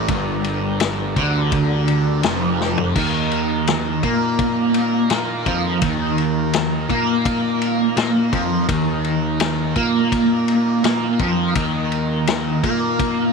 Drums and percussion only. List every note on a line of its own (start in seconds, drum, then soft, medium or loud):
0.08 kick loud
0.08 ride loud
0.44 ride medium
0.80 snare loud
0.80 ride loud
1.16 kick medium
1.16 ride medium
1.52 kick loud
1.52 ride loud
1.88 ride medium
2.23 snare loud
2.23 ride loud
2.61 snare medium
2.78 floor tom loud
2.96 kick loud
2.96 crash loud
3.32 ride medium
3.67 snare loud
3.67 ride loud
4.03 kick medium
4.03 ride medium
4.39 kick loud
4.39 ride medium
4.74 ride medium
5.10 snare loud
5.10 ride loud
5.46 kick medium
5.46 ride medium
5.82 kick loud
5.82 ride loud
6.18 ride medium
6.53 snare loud
6.53 ride loud
6.90 kick medium
6.90 ride medium
7.25 kick loud
7.25 ride loud
7.62 ride medium
7.97 snare loud
7.97 ride medium
8.33 kick medium
8.33 ride medium
8.69 kick loud
8.69 ride loud
9.04 ride medium
9.40 snare loud
9.40 ride loud
9.76 kick medium
9.76 ride medium
10.12 kick loud
10.12 ride medium
10.48 ride medium
10.84 snare loud
10.84 ride medium
11.19 kick loud
11.19 ride medium
11.55 kick loud
11.55 ride loud
11.92 ride medium
12.27 snare loud
12.27 ride loud
12.64 kick medium
12.64 ride medium
12.99 kick loud
12.99 ride loud